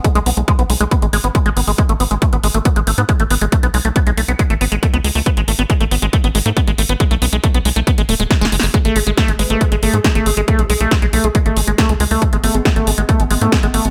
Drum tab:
HH |x--x--o--x--x--x--o--x--x--x--o--x--x--x--o--o--|x--x--o--x--x--x--o--x--x--x--o--x--x--x--o--x--|x--x--o--x--x--x--o--x--x--x--o--x--x--x--o--o--|x--x--o--x--x--x--o--x--x--x--o--x--x--x--o--x--|
SD |------------------------------------------------|------------------------------------------------|------------------------------------------------|------------------------------------------------|
BD |o-----------o-----------o-----------o-----------|o-----------o-----------o-----------o-----------|o-----------o-----------o-----------o-----------|o-----------o-----------o-----------o-----------|

HH |x--x--o--x--x--x--o--x--x--x--o--x--x--x--o--o--|x--x--o--x--x--x--o--x--x--x--o--x--x--x--o--x--|x--x--o--x--x--x--o--x--x--x--o--x--x--x--o--o--|x--x--o--x--x--x--o--x--x--x--o--x--x--x--o--x--|
SD |------------------------------------o---o---o---|------------o-----------------------o-----------|------------o-----------------------o-----------|------------o-----------------------o-----------|
BD |o-----------o-----------o-----------o-----------|o-----------o-----------o-----------o-----------|o-----------o-----------o-----------o-----------|o-----------o-----------o-----------o-----------|